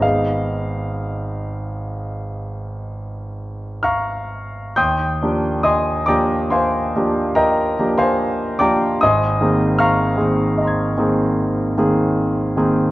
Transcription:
<<
  \new Staff \with { instrumentName = "Grand piano" } { \time 5/4 \key ees \major \tempo 4 = 70 << { f''1 <f'' bes'' des''' f'''>4 | <g'' c''' ees''' g'''>4 <ees'' aes'' c''' ees'''>8 <d'' g'' bes'' d'''>8 <c'' f'' aes'' c'''>4 <bes' ees'' g'' bes''>8. <c'' f'' aes'' c'''>8. <d'' g'' bes'' d'''>8 | <ees'' aes'' c''' ees'''>4 <f'' bes'' des''' f'''>2~ <f'' bes'' des''' f'''>8 r4. | } \\ { r1 r4 | r1 r4 | r2 <ees'' bes'' c''' aes'''>2. | } >> }
  \new Staff \with { instrumentName = "Grand piano" } { \time 5/4 \key ees \major <aes,, aes ces' ees' ees''>1~ <aes,, aes ces' ees' ees''>4 | ees,8 <f bes d' g'>4 <f bes d' g'>4 <f bes d' g'>4 <f bes d' g'>4 <f bes d' g'>8 | aes,,8 <ees bes c' aes'>4 <ees bes c' aes'>4 <ees bes c' aes'>4 <ees bes c' aes'>4 <ees bes c' aes'>8 | }
>>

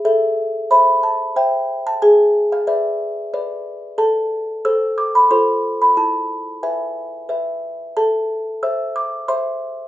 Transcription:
\new Staff \with { instrumentName = "Music box" } { \time 3/4 \key a \minor \tempo 4 = 91 << { e''4 b''8 a''8 g''8. a''16 | gis''8. f''16 e''4. r8 | a''4 e'''8 d'''16 b''16 c'''8. b''16 | a''4 gis''4. r8 |
a''4 e'''8 d'''8 c'''4 | } \\ { a'4 <c'' e''>4 <c'' e''>4 | gis'4 <b' d''>4 <b' d''>4 | a'4 <a' c''>4 <f' a' c''>4 | e'4 <b' e''>4 <b' e''>4 |
a'4 <c'' e''>4 <c'' e''>4 | } >> }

